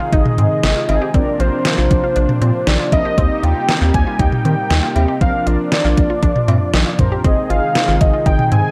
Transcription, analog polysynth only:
0.89 1.11 C4 medium
0.89 1.11 D#4 medium
0.89 1.11 G#4 loud
1.15 2.03 C4 medium
1.15 2.03 D4 medium
1.15 2.03 A#4 medium
2.92 3.14 C4 medium
2.92 3.14 D4 medium
2.92 3.14 A#4 medium
3.18 4.06 C4 medium
3.18 4.06 D#4 medium
3.18 4.06 G4 medium
4.96 5.18 C4 medium
4.96 5.18 D#4 medium
4.96 5.18 G4 loud
5.21 6.09 C4 medium
5.21 6.09 D4 medium
5.21 6.09 A#4 medium
6.99 7.21 C4 medium
6.99 7.21 D4 medium
6.99 7.21 A#4 medium
7.25 8.13 C4 medium
7.25 8.13 D#4 medium
7.25 8.13 G#4 medium

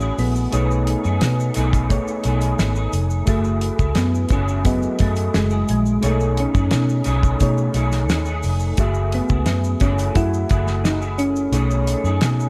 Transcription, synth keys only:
0.00 0.15 C#4 medium
0.19 2.90 B3 medium
3.28 3.99 A3 medium
3.96 4.32 B3 medium
4.32 4.64 C#4 medium
4.65 5.01 B3 loud
5.01 5.36 A3 medium
5.36 5.70 G#3 medium
5.71 6.05 G#3 medium
6.06 6.40 A3 medium
6.40 7.72 C#4 medium
8.80 9.11 A3 medium
9.15 9.84 B3 medium
9.81 10.17 C#4 medium
10.16 10.81 E4 loud
10.84 10.98 D#4 medium
11.18 12.49 C#4 medium

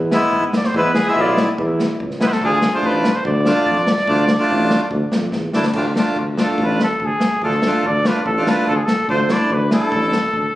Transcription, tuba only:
0.00 0.16 E2 loud
0.32 0.58 G#2 medium
0.75 1.00 E2 medium
1.17 1.42 B1 loud
1.59 1.84 E2 loud
2.00 2.25 C#2 medium
2.42 2.67 D2 medium
2.83 3.08 A1 medium
3.25 3.50 D2 loud
3.67 3.92 F2 medium
4.08 4.33 D2 loud
4.49 4.74 A1 medium
4.91 5.04 D2 loud
5.12 5.31 F2 medium
5.32 5.51 E2 medium
5.54 5.73 D2 medium
5.74 5.99 D2 medium
6.17 6.42 D2 medium
6.58 6.83 A1 loud
7.00 7.12 D2 medium
7.42 7.67 D2 medium
7.83 8.08 D2 medium
8.26 8.51 A1 medium
8.68 8.80 D2 medium
9.09 9.34 D2 medium
9.50 9.75 D2 medium
9.92 10.17 A1 loud
10.34 10.46 D2 medium

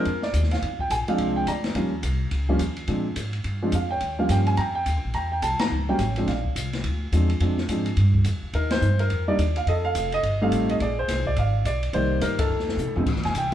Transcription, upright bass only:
0.05 0.33 F2 medium
0.34 0.61 D#2 medium
0.62 0.90 F2 medium
0.90 1.06 A#1 medium
1.07 muted upright bass stroke soft
1.19 1.46 C2 medium
1.47 1.74 D2 medium
1.75 2.02 D#2 medium
2.03 2.31 C2 medium
2.31 2.59 C#2 medium
2.59 2.87 D#2 medium
2.88 3.15 A#2 medium
3.16 3.44 G#2 medium
3.44 3.72 G2 medium
3.72 4.00 F2 medium
4.01 4.29 D#2 medium
4.29 4.57 G2 medium
4.57 4.85 F2 medium
4.86 4.96 D#2 medium
4.96 5.04 C#2 soft
5.05 5.14 A#1 medium
5.14 5.42 E2 medium
5.42 5.58 C2 medium
5.60 muted upright bass stroke soft
5.71 5.98 C#2 medium
5.99 6.26 A1 medium
6.27 6.55 A#1 medium
6.56 6.83 C2 medium
6.84 7.11 D2 medium
7.12 7.40 E2 medium
7.40 7.68 F2 medium
7.69 7.96 G#2 medium
7.97 8.24 G2 medium
8.25 8.41 F2 medium
8.42 muted upright bass stroke soft
8.54 8.81 D#2 medium
8.81 9.09 G2 medium
9.10 9.38 F2 medium
9.38 9.66 D#2 medium
9.66 9.94 F2 medium
9.95 10.23 F1 medium
10.23 10.51 G1 medium
10.52 10.79 A1 medium
10.80 11.08 A#1 medium
11.08 11.36 C2 medium
11.37 11.64 G#1 medium
11.65 11.92 B1 medium
11.93 12.21 C2 medium
12.21 12.49 G2 medium
12.49 12.76 F2 medium
12.77 12.87 C3 medium
12.87 12.96 A2 medium
12.96 13.05 F2 medium
13.06 13.15 A#1 medium
13.15 13.24 G#1 soft
13.25 13.34 F1 medium
13.34 13.54 C2 medium

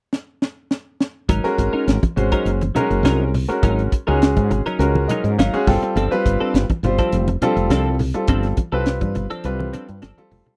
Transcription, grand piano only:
1.44 1.96 G#3 medium
1.44 1.96 C#4 medium
1.44 1.96 F#4 medium
1.44 1.96 A#4 loud
2.16 2.59 G#3 medium
2.16 2.59 C#4 medium
2.16 2.59 F#4 medium
2.16 2.59 C5 medium
2.76 3.28 G#3 medium
2.76 3.28 C#4 medium
2.76 3.28 F#4 medium
2.76 3.28 A#4 medium
3.48 3.90 G#3 medium
3.48 3.90 C#4 medium
3.48 3.90 F#4 medium
3.48 3.90 A#4 medium
4.07 4.59 G#3 medium
4.07 4.59 C#4 medium
4.07 4.59 F#4 medium
4.07 4.59 G#4 medium
4.79 5.31 G#3 medium
4.79 5.32 C#4 medium
4.79 5.31 F#4 medium
4.79 5.32 A#4 medium
5.08 5.36 D#5 medium
5.38 5.65 F5 medium
5.53 5.67 G#3 medium
5.53 5.68 C#4 medium
5.53 5.67 F#4 medium
5.53 5.68 G#4 loud
5.67 6.02 G3 medium
5.67 6.03 C4 medium
5.67 6.02 F4 medium
5.67 6.03 A4 medium
5.67 5.94 G5 medium
6.11 6.62 G3 medium
6.11 6.62 C4 medium
6.11 6.62 F4 medium
6.11 6.63 B4 loud
6.84 7.26 G3 medium
6.84 7.26 C4 medium
6.84 7.26 F4 medium
6.84 7.26 C5 medium
7.43 7.94 G3 medium
7.43 7.94 C4 medium
7.43 7.94 F4 medium
7.43 7.94 A4 medium
8.15 8.55 G3 medium
8.15 8.55 C4 medium
8.15 8.55 F4 medium
8.15 8.55 A4 medium
8.73 9.24 G3 medium
8.73 9.24 C4 medium
8.73 9.24 F4 medium
8.73 9.24 B4 medium
9.45 9.97 G3 medium
9.45 9.97 C4 medium
9.45 9.97 F4 medium
9.45 9.97 B4 medium
10.18 10.56 G3 medium
10.18 10.56 C4 medium
10.18 10.56 F4 medium
10.18 10.56 A4 medium

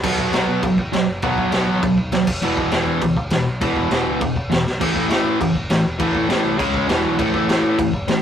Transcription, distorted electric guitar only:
0.04 0.32 B2 medium
0.04 0.32 F#3 medium
0.04 0.33 B3 medium
0.33 0.62 B2 medium
0.33 0.62 F#3 loud
0.33 0.63 B3 loud
0.63 0.76 B2 medium
0.63 0.77 F#3 medium
0.93 1.06 B2 medium
0.93 1.06 F#3 loud
1.23 1.51 B2 medium
1.23 1.52 F#3 medium
1.23 1.52 B3 medium
1.52 1.81 B2 medium
1.52 1.81 F#3 loud
1.52 1.82 B3 loud
1.83 1.96 B2 medium
1.83 1.96 F#3 medium
2.12 2.26 B2 medium
2.12 2.26 F#3 medium
2.42 2.70 E2 medium
2.42 2.71 B2 medium
2.42 2.71 E3 medium
2.72 3.01 E2 loud
2.72 3.01 B2 loud
2.72 3.01 E3 loud
3.02 3.15 E2 medium
3.02 3.16 B2 medium
3.32 3.45 E2 medium
3.32 3.45 B2 medium
3.61 3.90 E2 medium
3.61 3.90 B2 medium
3.61 3.91 E3 medium
3.91 4.19 E2 medium
3.91 4.19 B2 medium
3.91 4.20 E3 loud
4.20 4.34 E2 medium
4.20 4.34 B2 medium
4.50 4.64 E2 medium
4.50 4.64 B2 medium
4.81 5.09 A2 medium
4.81 5.09 E3 medium
4.81 5.09 A3 medium
5.10 5.39 A2 medium
5.10 5.39 E3 loud
5.10 5.39 A3 loud
5.40 5.54 A2 medium
5.40 5.54 E3 medium
5.70 5.84 A2 medium
5.70 5.84 E3 medium
5.99 6.27 A2 medium
5.99 6.28 E3 medium
5.99 6.28 A3 medium
6.28 6.58 A2 loud
6.28 6.58 E3 medium
6.28 6.58 A3 loud
6.58 6.88 C#3 medium
6.58 6.88 G#3 medium
6.58 6.88 C#4 medium
6.88 7.17 E2 medium
6.88 7.17 B2 loud
6.88 7.17 E3 loud
7.18 7.47 A2 medium
7.18 7.48 E3 medium
7.18 7.48 A3 loud
7.48 7.77 A2 medium
7.48 7.77 E3 loud
7.48 7.78 A3 loud
7.78 7.92 A2 medium
7.78 7.92 E3 medium
8.08 8.21 A2 medium
8.08 8.21 E3 medium

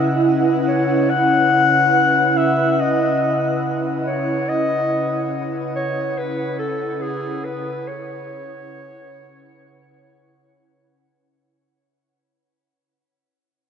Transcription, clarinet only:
0.00 0.26 D#5 medium
0.68 1.11 C#5 medium
1.09 2.39 F#5 loud
2.37 2.81 E5 medium
2.80 3.64 D#5 medium
4.07 4.50 C#5 medium
4.49 5.33 D#5 loud
5.76 6.19 C#5 loud
6.18 6.58 B4 loud
6.59 7.03 A4 medium
7.01 7.46 G#4 medium
7.44 7.89 B4 medium
7.87 10.40 C#5 loud

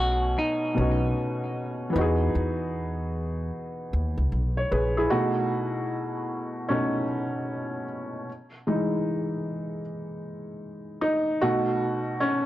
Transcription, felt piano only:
0.00 0.70 B2 medium
0.00 0.76 A3 medium
0.00 0.72 B3 medium
0.00 0.73 C#4 medium
0.00 0.75 D#4 medium
0.74 1.94 B2 soft
0.74 1.91 B3 soft
0.74 1.96 C#4 soft
0.79 1.94 D#4 soft
0.79 1.97 F#4 medium
1.90 5.04 E3 medium
1.90 5.06 B3 medium
1.96 4.28 D#4 medium
1.96 4.30 F#4 medium
2.01 4.31 G#4 medium
4.57 4.71 C#5 medium
4.71 4.96 G#4 medium
4.71 4.95 B4 medium
4.97 5.35 E4 medium
4.97 5.35 G#4 medium
5.10 6.68 B2 soft
5.10 6.69 A3 soft
5.10 6.69 D#4 medium
5.10 6.73 F#4 medium
6.69 7.05 B2 soft
6.69 7.05 A3 soft
6.69 7.83 C#4 medium
6.69 7.05 D#4 soft
8.67 9.81 E3 soft
8.67 9.81 G#3 soft
8.67 9.82 D#4 medium
11.01 11.42 D#4 medium
11.41 11.99 B2 medium
11.41 11.99 A3 soft
11.41 12.00 D#4 medium
11.41 12.23 F#4 loud
12.20 12.46 C#4 medium

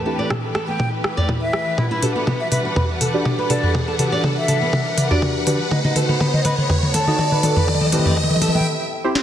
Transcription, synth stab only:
0.06 1.14 C4 medium
0.06 1.14 E4 medium
0.06 1.14 G4 medium
0.06 1.14 B4 medium
2.03 3.11 D4 medium
2.03 3.11 F#4 medium
2.03 3.11 G4 medium
2.03 3.11 B4 medium
3.14 3.47 D4 medium
3.14 3.47 F#4 medium
3.14 3.47 G4 medium
3.14 3.47 D5 loud
3.50 3.60 D4 medium
3.50 3.61 F#4 medium
3.50 3.60 G4 medium
3.50 3.60 B4 loud
3.99 5.08 D4 medium
3.99 5.08 F#4 medium
3.99 5.08 G4 medium
3.99 5.08 B4 medium
5.11 5.44 D4 loud
5.11 5.44 F#4 medium
5.11 5.44 G4 medium
5.11 5.44 D5 loud
5.47 5.57 D4 medium
5.47 5.57 F#4 medium
5.47 5.57 G4 medium
5.47 5.57 B4 loud
5.96 7.04 D#4 medium
5.96 7.04 F#4 medium
5.96 7.04 A4 medium
5.96 7.04 B4 medium
7.08 7.41 D#4 medium
7.08 7.41 F#4 medium
7.08 7.41 A4 medium
7.08 7.41 D#5 loud
7.43 7.54 D#4 medium
7.43 7.54 F#4 medium
7.43 7.54 A4 medium
7.43 7.54 B4 loud
7.93 9.01 C4 medium
7.93 9.01 E4 medium
7.93 9.01 G4 medium
7.93 9.01 B4 medium
9.04 9.23 C4 loud
9.04 9.23 E4 medium
9.04 9.23 G4 medium
9.04 9.23 C5 loud

